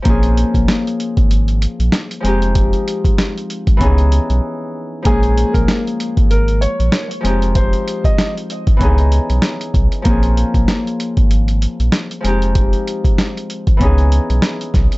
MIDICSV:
0, 0, Header, 1, 5, 480
1, 0, Start_track
1, 0, Key_signature, -5, "minor"
1, 0, Tempo, 625000
1, 42, Time_signature, 4, 2, 24, 8
1, 11504, End_track
2, 0, Start_track
2, 0, Title_t, "Upright piano"
2, 0, Program_c, 0, 0
2, 3888, Note_on_c, 0, 68, 113
2, 4239, Note_off_c, 0, 68, 0
2, 4247, Note_on_c, 0, 70, 74
2, 4468, Note_off_c, 0, 70, 0
2, 4842, Note_on_c, 0, 70, 89
2, 5058, Note_off_c, 0, 70, 0
2, 5078, Note_on_c, 0, 73, 82
2, 5434, Note_off_c, 0, 73, 0
2, 5802, Note_on_c, 0, 72, 95
2, 6156, Note_off_c, 0, 72, 0
2, 6181, Note_on_c, 0, 75, 84
2, 6396, Note_off_c, 0, 75, 0
2, 11504, End_track
3, 0, Start_track
3, 0, Title_t, "Harp"
3, 0, Program_c, 1, 46
3, 18, Note_on_c, 1, 53, 75
3, 32, Note_on_c, 1, 58, 78
3, 46, Note_on_c, 1, 60, 72
3, 60, Note_on_c, 1, 61, 65
3, 75, Note_on_c, 1, 68, 85
3, 1684, Note_off_c, 1, 53, 0
3, 1693, Note_on_c, 1, 53, 76
3, 1707, Note_on_c, 1, 56, 70
3, 1719, Note_off_c, 1, 60, 0
3, 1722, Note_on_c, 1, 60, 69
3, 1736, Note_on_c, 1, 63, 73
3, 1750, Note_on_c, 1, 67, 79
3, 1768, Note_off_c, 1, 61, 0
3, 1796, Note_off_c, 1, 68, 0
3, 2501, Note_off_c, 1, 58, 0
3, 2895, Note_on_c, 1, 52, 82
3, 2908, Note_on_c, 1, 59, 72
3, 2923, Note_on_c, 1, 61, 74
3, 2934, Note_off_c, 1, 63, 0
3, 2937, Note_on_c, 1, 63, 72
3, 2951, Note_on_c, 1, 68, 83
3, 2954, Note_off_c, 1, 60, 0
3, 2960, Note_off_c, 1, 53, 0
3, 2960, Note_off_c, 1, 56, 0
3, 2997, Note_off_c, 1, 67, 0
3, 3859, Note_on_c, 1, 53, 72
3, 3874, Note_on_c, 1, 58, 76
3, 3888, Note_on_c, 1, 56, 75
3, 3899, Note_off_c, 1, 61, 0
3, 3902, Note_on_c, 1, 61, 68
3, 3914, Note_off_c, 1, 68, 0
3, 3917, Note_on_c, 1, 68, 86
3, 3920, Note_off_c, 1, 52, 0
3, 3920, Note_off_c, 1, 59, 0
3, 5013, Note_off_c, 1, 63, 0
3, 5525, Note_off_c, 1, 53, 0
3, 5534, Note_on_c, 1, 53, 76
3, 5539, Note_off_c, 1, 56, 0
3, 5548, Note_on_c, 1, 56, 74
3, 5563, Note_on_c, 1, 60, 69
3, 5577, Note_on_c, 1, 63, 70
3, 5591, Note_on_c, 1, 67, 80
3, 5609, Note_off_c, 1, 61, 0
3, 5638, Note_off_c, 1, 68, 0
3, 6343, Note_off_c, 1, 58, 0
3, 6733, Note_on_c, 1, 52, 81
3, 6747, Note_on_c, 1, 59, 71
3, 6762, Note_on_c, 1, 61, 70
3, 6773, Note_off_c, 1, 63, 0
3, 6776, Note_on_c, 1, 63, 74
3, 6791, Note_on_c, 1, 68, 84
3, 6793, Note_off_c, 1, 60, 0
3, 6800, Note_off_c, 1, 53, 0
3, 6800, Note_off_c, 1, 56, 0
3, 6837, Note_off_c, 1, 67, 0
3, 7697, Note_on_c, 1, 53, 77
3, 7712, Note_on_c, 1, 58, 76
3, 7726, Note_on_c, 1, 60, 72
3, 7738, Note_off_c, 1, 61, 0
3, 7741, Note_on_c, 1, 61, 65
3, 7752, Note_off_c, 1, 68, 0
3, 7755, Note_on_c, 1, 68, 86
3, 7758, Note_off_c, 1, 59, 0
3, 7760, Note_off_c, 1, 52, 0
3, 8852, Note_off_c, 1, 63, 0
3, 9364, Note_off_c, 1, 53, 0
3, 9374, Note_on_c, 1, 53, 76
3, 9388, Note_on_c, 1, 56, 73
3, 9399, Note_off_c, 1, 60, 0
3, 9402, Note_on_c, 1, 60, 69
3, 9417, Note_on_c, 1, 63, 70
3, 9431, Note_on_c, 1, 67, 78
3, 9448, Note_off_c, 1, 61, 0
3, 9477, Note_off_c, 1, 68, 0
3, 10181, Note_off_c, 1, 58, 0
3, 10575, Note_on_c, 1, 52, 81
3, 10590, Note_on_c, 1, 59, 72
3, 10604, Note_on_c, 1, 61, 69
3, 10614, Note_off_c, 1, 63, 0
3, 10617, Note_on_c, 1, 63, 72
3, 10632, Note_on_c, 1, 68, 80
3, 10636, Note_off_c, 1, 60, 0
3, 10640, Note_off_c, 1, 53, 0
3, 10640, Note_off_c, 1, 56, 0
3, 10678, Note_off_c, 1, 67, 0
3, 11504, Note_off_c, 1, 52, 0
3, 11504, Note_off_c, 1, 59, 0
3, 11504, Note_off_c, 1, 61, 0
3, 11504, Note_off_c, 1, 63, 0
3, 11504, Note_off_c, 1, 68, 0
3, 11504, End_track
4, 0, Start_track
4, 0, Title_t, "Sub bass"
4, 0, Program_c, 2, 38
4, 42, Note_on_c, 2, 34, 110
4, 342, Note_off_c, 2, 34, 0
4, 418, Note_on_c, 2, 34, 93
4, 501, Note_off_c, 2, 34, 0
4, 900, Note_on_c, 2, 32, 84
4, 1281, Note_off_c, 2, 32, 0
4, 1379, Note_on_c, 2, 34, 91
4, 1461, Note_off_c, 2, 34, 0
4, 1721, Note_on_c, 2, 29, 102
4, 2103, Note_off_c, 2, 29, 0
4, 2820, Note_on_c, 2, 32, 97
4, 2902, Note_off_c, 2, 32, 0
4, 2924, Note_on_c, 2, 37, 114
4, 3223, Note_off_c, 2, 37, 0
4, 3300, Note_on_c, 2, 35, 89
4, 3382, Note_off_c, 2, 35, 0
4, 3883, Note_on_c, 2, 34, 110
4, 4182, Note_off_c, 2, 34, 0
4, 4258, Note_on_c, 2, 34, 92
4, 4340, Note_off_c, 2, 34, 0
4, 4740, Note_on_c, 2, 32, 82
4, 5121, Note_off_c, 2, 32, 0
4, 5219, Note_on_c, 2, 34, 88
4, 5301, Note_off_c, 2, 34, 0
4, 5563, Note_on_c, 2, 29, 103
4, 5944, Note_off_c, 2, 29, 0
4, 6659, Note_on_c, 2, 32, 97
4, 6741, Note_off_c, 2, 32, 0
4, 6764, Note_on_c, 2, 37, 117
4, 7063, Note_off_c, 2, 37, 0
4, 7139, Note_on_c, 2, 35, 87
4, 7221, Note_off_c, 2, 35, 0
4, 7481, Note_on_c, 2, 35, 100
4, 7591, Note_off_c, 2, 35, 0
4, 7721, Note_on_c, 2, 34, 112
4, 8021, Note_off_c, 2, 34, 0
4, 8098, Note_on_c, 2, 34, 92
4, 8180, Note_off_c, 2, 34, 0
4, 8580, Note_on_c, 2, 32, 88
4, 8961, Note_off_c, 2, 32, 0
4, 9060, Note_on_c, 2, 34, 92
4, 9141, Note_off_c, 2, 34, 0
4, 9403, Note_on_c, 2, 29, 101
4, 9784, Note_off_c, 2, 29, 0
4, 10500, Note_on_c, 2, 32, 96
4, 10582, Note_off_c, 2, 32, 0
4, 10605, Note_on_c, 2, 37, 118
4, 10903, Note_off_c, 2, 37, 0
4, 10981, Note_on_c, 2, 35, 87
4, 11062, Note_off_c, 2, 35, 0
4, 11322, Note_on_c, 2, 35, 97
4, 11431, Note_off_c, 2, 35, 0
4, 11504, End_track
5, 0, Start_track
5, 0, Title_t, "Drums"
5, 39, Note_on_c, 9, 42, 101
5, 42, Note_on_c, 9, 36, 116
5, 116, Note_off_c, 9, 42, 0
5, 118, Note_off_c, 9, 36, 0
5, 176, Note_on_c, 9, 42, 56
5, 252, Note_off_c, 9, 42, 0
5, 287, Note_on_c, 9, 42, 82
5, 364, Note_off_c, 9, 42, 0
5, 418, Note_on_c, 9, 36, 81
5, 421, Note_on_c, 9, 42, 60
5, 495, Note_off_c, 9, 36, 0
5, 498, Note_off_c, 9, 42, 0
5, 525, Note_on_c, 9, 38, 120
5, 528, Note_on_c, 9, 42, 85
5, 602, Note_off_c, 9, 38, 0
5, 604, Note_off_c, 9, 42, 0
5, 670, Note_on_c, 9, 42, 51
5, 747, Note_off_c, 9, 42, 0
5, 768, Note_on_c, 9, 42, 70
5, 844, Note_off_c, 9, 42, 0
5, 899, Note_on_c, 9, 42, 50
5, 900, Note_on_c, 9, 36, 97
5, 976, Note_off_c, 9, 42, 0
5, 977, Note_off_c, 9, 36, 0
5, 1004, Note_on_c, 9, 42, 90
5, 1081, Note_off_c, 9, 42, 0
5, 1137, Note_on_c, 9, 42, 50
5, 1213, Note_off_c, 9, 42, 0
5, 1244, Note_on_c, 9, 42, 84
5, 1321, Note_off_c, 9, 42, 0
5, 1382, Note_on_c, 9, 42, 46
5, 1459, Note_off_c, 9, 42, 0
5, 1477, Note_on_c, 9, 38, 121
5, 1484, Note_on_c, 9, 42, 90
5, 1554, Note_off_c, 9, 38, 0
5, 1561, Note_off_c, 9, 42, 0
5, 1621, Note_on_c, 9, 42, 58
5, 1697, Note_off_c, 9, 42, 0
5, 1725, Note_on_c, 9, 42, 72
5, 1802, Note_off_c, 9, 42, 0
5, 1859, Note_on_c, 9, 42, 50
5, 1936, Note_off_c, 9, 42, 0
5, 1960, Note_on_c, 9, 42, 102
5, 1962, Note_on_c, 9, 36, 114
5, 2037, Note_off_c, 9, 42, 0
5, 2039, Note_off_c, 9, 36, 0
5, 2097, Note_on_c, 9, 42, 56
5, 2174, Note_off_c, 9, 42, 0
5, 2209, Note_on_c, 9, 42, 79
5, 2286, Note_off_c, 9, 42, 0
5, 2339, Note_on_c, 9, 36, 85
5, 2343, Note_on_c, 9, 42, 60
5, 2416, Note_off_c, 9, 36, 0
5, 2420, Note_off_c, 9, 42, 0
5, 2445, Note_on_c, 9, 38, 121
5, 2448, Note_on_c, 9, 42, 86
5, 2522, Note_off_c, 9, 38, 0
5, 2525, Note_off_c, 9, 42, 0
5, 2592, Note_on_c, 9, 42, 51
5, 2669, Note_off_c, 9, 42, 0
5, 2688, Note_on_c, 9, 42, 73
5, 2765, Note_off_c, 9, 42, 0
5, 2819, Note_on_c, 9, 42, 49
5, 2820, Note_on_c, 9, 36, 95
5, 2896, Note_off_c, 9, 42, 0
5, 2897, Note_off_c, 9, 36, 0
5, 2924, Note_on_c, 9, 36, 99
5, 2924, Note_on_c, 9, 42, 89
5, 3001, Note_off_c, 9, 36, 0
5, 3001, Note_off_c, 9, 42, 0
5, 3057, Note_on_c, 9, 42, 49
5, 3133, Note_off_c, 9, 42, 0
5, 3163, Note_on_c, 9, 42, 82
5, 3240, Note_off_c, 9, 42, 0
5, 3302, Note_on_c, 9, 42, 44
5, 3378, Note_off_c, 9, 42, 0
5, 3880, Note_on_c, 9, 42, 103
5, 3882, Note_on_c, 9, 36, 108
5, 3957, Note_off_c, 9, 42, 0
5, 3959, Note_off_c, 9, 36, 0
5, 4016, Note_on_c, 9, 42, 57
5, 4093, Note_off_c, 9, 42, 0
5, 4128, Note_on_c, 9, 42, 78
5, 4205, Note_off_c, 9, 42, 0
5, 4258, Note_on_c, 9, 36, 81
5, 4262, Note_on_c, 9, 42, 60
5, 4335, Note_off_c, 9, 36, 0
5, 4338, Note_off_c, 9, 42, 0
5, 4365, Note_on_c, 9, 38, 116
5, 4368, Note_on_c, 9, 42, 83
5, 4442, Note_off_c, 9, 38, 0
5, 4444, Note_off_c, 9, 42, 0
5, 4511, Note_on_c, 9, 42, 49
5, 4588, Note_off_c, 9, 42, 0
5, 4608, Note_on_c, 9, 42, 73
5, 4685, Note_off_c, 9, 42, 0
5, 4739, Note_on_c, 9, 42, 51
5, 4740, Note_on_c, 9, 36, 98
5, 4816, Note_off_c, 9, 42, 0
5, 4817, Note_off_c, 9, 36, 0
5, 4844, Note_on_c, 9, 42, 84
5, 4921, Note_off_c, 9, 42, 0
5, 4977, Note_on_c, 9, 42, 49
5, 5054, Note_off_c, 9, 42, 0
5, 5084, Note_on_c, 9, 42, 84
5, 5161, Note_off_c, 9, 42, 0
5, 5222, Note_on_c, 9, 42, 44
5, 5299, Note_off_c, 9, 42, 0
5, 5316, Note_on_c, 9, 38, 121
5, 5324, Note_on_c, 9, 42, 91
5, 5393, Note_off_c, 9, 38, 0
5, 5401, Note_off_c, 9, 42, 0
5, 5461, Note_on_c, 9, 42, 59
5, 5537, Note_off_c, 9, 42, 0
5, 5566, Note_on_c, 9, 42, 74
5, 5643, Note_off_c, 9, 42, 0
5, 5700, Note_on_c, 9, 42, 49
5, 5777, Note_off_c, 9, 42, 0
5, 5800, Note_on_c, 9, 42, 100
5, 5802, Note_on_c, 9, 36, 113
5, 5877, Note_off_c, 9, 42, 0
5, 5879, Note_off_c, 9, 36, 0
5, 5937, Note_on_c, 9, 42, 55
5, 6014, Note_off_c, 9, 42, 0
5, 6049, Note_on_c, 9, 42, 78
5, 6125, Note_off_c, 9, 42, 0
5, 6178, Note_on_c, 9, 36, 80
5, 6182, Note_on_c, 9, 42, 62
5, 6255, Note_off_c, 9, 36, 0
5, 6259, Note_off_c, 9, 42, 0
5, 6286, Note_on_c, 9, 38, 118
5, 6289, Note_on_c, 9, 42, 87
5, 6363, Note_off_c, 9, 38, 0
5, 6365, Note_off_c, 9, 42, 0
5, 6432, Note_on_c, 9, 42, 51
5, 6509, Note_off_c, 9, 42, 0
5, 6527, Note_on_c, 9, 42, 70
5, 6604, Note_off_c, 9, 42, 0
5, 6658, Note_on_c, 9, 42, 52
5, 6659, Note_on_c, 9, 36, 97
5, 6735, Note_off_c, 9, 42, 0
5, 6736, Note_off_c, 9, 36, 0
5, 6763, Note_on_c, 9, 36, 98
5, 6764, Note_on_c, 9, 42, 85
5, 6840, Note_off_c, 9, 36, 0
5, 6840, Note_off_c, 9, 42, 0
5, 6896, Note_on_c, 9, 42, 51
5, 6973, Note_off_c, 9, 42, 0
5, 7003, Note_on_c, 9, 42, 83
5, 7079, Note_off_c, 9, 42, 0
5, 7140, Note_on_c, 9, 42, 46
5, 7217, Note_off_c, 9, 42, 0
5, 7235, Note_on_c, 9, 38, 119
5, 7242, Note_on_c, 9, 42, 92
5, 7312, Note_off_c, 9, 38, 0
5, 7319, Note_off_c, 9, 42, 0
5, 7380, Note_on_c, 9, 42, 60
5, 7456, Note_off_c, 9, 42, 0
5, 7481, Note_on_c, 9, 36, 101
5, 7484, Note_on_c, 9, 42, 71
5, 7558, Note_off_c, 9, 36, 0
5, 7561, Note_off_c, 9, 42, 0
5, 7618, Note_on_c, 9, 42, 49
5, 7695, Note_off_c, 9, 42, 0
5, 7719, Note_on_c, 9, 42, 102
5, 7721, Note_on_c, 9, 36, 113
5, 7795, Note_off_c, 9, 42, 0
5, 7798, Note_off_c, 9, 36, 0
5, 7855, Note_on_c, 9, 42, 56
5, 7932, Note_off_c, 9, 42, 0
5, 7967, Note_on_c, 9, 42, 79
5, 8044, Note_off_c, 9, 42, 0
5, 8097, Note_on_c, 9, 36, 84
5, 8100, Note_on_c, 9, 42, 61
5, 8174, Note_off_c, 9, 36, 0
5, 8177, Note_off_c, 9, 42, 0
5, 8203, Note_on_c, 9, 38, 117
5, 8206, Note_on_c, 9, 42, 86
5, 8280, Note_off_c, 9, 38, 0
5, 8282, Note_off_c, 9, 42, 0
5, 8350, Note_on_c, 9, 42, 50
5, 8427, Note_off_c, 9, 42, 0
5, 8447, Note_on_c, 9, 42, 74
5, 8524, Note_off_c, 9, 42, 0
5, 8578, Note_on_c, 9, 42, 49
5, 8579, Note_on_c, 9, 36, 96
5, 8655, Note_off_c, 9, 42, 0
5, 8656, Note_off_c, 9, 36, 0
5, 8684, Note_on_c, 9, 42, 87
5, 8761, Note_off_c, 9, 42, 0
5, 8817, Note_on_c, 9, 42, 49
5, 8894, Note_off_c, 9, 42, 0
5, 8924, Note_on_c, 9, 42, 83
5, 9001, Note_off_c, 9, 42, 0
5, 9062, Note_on_c, 9, 42, 45
5, 9138, Note_off_c, 9, 42, 0
5, 9156, Note_on_c, 9, 38, 123
5, 9164, Note_on_c, 9, 42, 94
5, 9233, Note_off_c, 9, 38, 0
5, 9241, Note_off_c, 9, 42, 0
5, 9300, Note_on_c, 9, 42, 60
5, 9377, Note_off_c, 9, 42, 0
5, 9405, Note_on_c, 9, 42, 72
5, 9481, Note_off_c, 9, 42, 0
5, 9539, Note_on_c, 9, 42, 51
5, 9616, Note_off_c, 9, 42, 0
5, 9640, Note_on_c, 9, 42, 103
5, 9642, Note_on_c, 9, 36, 115
5, 9717, Note_off_c, 9, 42, 0
5, 9719, Note_off_c, 9, 36, 0
5, 9776, Note_on_c, 9, 42, 56
5, 9853, Note_off_c, 9, 42, 0
5, 9888, Note_on_c, 9, 42, 78
5, 9965, Note_off_c, 9, 42, 0
5, 10018, Note_on_c, 9, 36, 84
5, 10022, Note_on_c, 9, 42, 61
5, 10095, Note_off_c, 9, 36, 0
5, 10099, Note_off_c, 9, 42, 0
5, 10125, Note_on_c, 9, 38, 119
5, 10128, Note_on_c, 9, 42, 84
5, 10202, Note_off_c, 9, 38, 0
5, 10205, Note_off_c, 9, 42, 0
5, 10271, Note_on_c, 9, 42, 52
5, 10348, Note_off_c, 9, 42, 0
5, 10367, Note_on_c, 9, 42, 76
5, 10444, Note_off_c, 9, 42, 0
5, 10498, Note_on_c, 9, 42, 48
5, 10500, Note_on_c, 9, 36, 93
5, 10575, Note_off_c, 9, 42, 0
5, 10577, Note_off_c, 9, 36, 0
5, 10604, Note_on_c, 9, 36, 99
5, 10604, Note_on_c, 9, 42, 83
5, 10681, Note_off_c, 9, 36, 0
5, 10681, Note_off_c, 9, 42, 0
5, 10737, Note_on_c, 9, 42, 51
5, 10814, Note_off_c, 9, 42, 0
5, 10843, Note_on_c, 9, 42, 82
5, 10920, Note_off_c, 9, 42, 0
5, 10982, Note_on_c, 9, 42, 44
5, 11059, Note_off_c, 9, 42, 0
5, 11076, Note_on_c, 9, 38, 121
5, 11083, Note_on_c, 9, 42, 91
5, 11153, Note_off_c, 9, 38, 0
5, 11160, Note_off_c, 9, 42, 0
5, 11220, Note_on_c, 9, 42, 61
5, 11297, Note_off_c, 9, 42, 0
5, 11319, Note_on_c, 9, 38, 40
5, 11321, Note_on_c, 9, 36, 101
5, 11324, Note_on_c, 9, 42, 76
5, 11396, Note_off_c, 9, 38, 0
5, 11398, Note_off_c, 9, 36, 0
5, 11401, Note_off_c, 9, 42, 0
5, 11458, Note_on_c, 9, 42, 50
5, 11504, Note_off_c, 9, 42, 0
5, 11504, End_track
0, 0, End_of_file